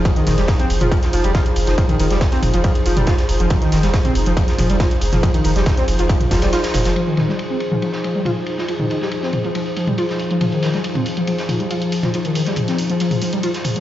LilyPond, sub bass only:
\new Staff \with { instrumentName = "Sub bass" } { \clef bass \time 4/4 \key f \minor \tempo 4 = 139 r8 f,,16 f,,16 r8 f,,16 f,,16 r8 f,,16 f,,16 r8 f,,16 f,,16 | r8 f,,16 f,,16 r8 f,,16 f,,16 r8 f,,16 f,,16 r8 f,,16 f,,16 | r8 f,,16 f,,16 r8 f,,16 f,,16 r8 f,,16 f,,16 r8 f,,16 f,,16 | r8 f,,16 f,,16 r8 f,,16 f,,16 r8 f,,16 f,,16 r8 f,,16 f,,16 |
r1 | r1 | r1 | r1 | }